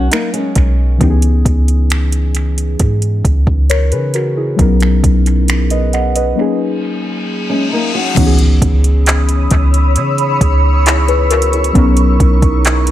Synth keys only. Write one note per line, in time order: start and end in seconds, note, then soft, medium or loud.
0.00 0.96 F#3 medium
0.00 0.96 B3 medium
0.00 0.97 C#4 medium
0.00 0.98 D#4 medium
0.00 0.98 A#4 medium
0.98 4.54 E3 medium
0.98 4.54 B3 medium
0.98 4.55 C#4 medium
1.02 3.66 D#4 medium
1.02 1.09 G4 medium
1.10 3.70 G#4 medium
3.70 3.91 A#4 medium
3.70 3.91 C#5 medium
3.92 4.13 G#4 medium
3.92 4.13 B4 medium
4.15 4.36 F#4 medium
4.15 4.36 A#4 medium
4.37 4.80 E4 medium
4.37 4.79 G#4 medium
4.56 6.33 F#3 medium
4.56 6.34 B3 medium
4.56 6.35 C#4 medium
4.60 6.35 D#4 medium
4.60 5.48 A#4 medium
5.71 5.93 B4 medium
5.71 5.92 D#5 medium
5.94 6.15 D#5 medium
5.94 6.15 F#5 medium
6.16 6.59 B4 medium
6.16 6.58 D#5 medium
6.36 8.12 F#3 medium
6.36 8.13 A#3 medium
6.36 8.14 C#4 medium
6.40 8.14 D#4 medium
6.40 8.15 G#4 medium
8.15 11.70 E3 medium
8.15 11.71 B3 medium
8.15 11.71 C#4 medium
8.19 10.83 D#4 medium
8.19 8.25 F#4 medium
8.27 10.85 G#4 medium
10.86 11.07 E4 medium
10.86 11.07 G#4 medium
11.08 11.30 G#4 medium
11.08 11.30 B4 medium
11.31 11.52 F#4 medium
11.31 11.52 A#4 medium
11.53 11.96 E4 medium
11.53 11.96 G#4 medium
11.73 12.91 F#3 medium
11.73 12.91 B3 medium
11.73 12.91 C#4 medium
11.77 12.91 D#4 medium
11.77 12.91 A#4 medium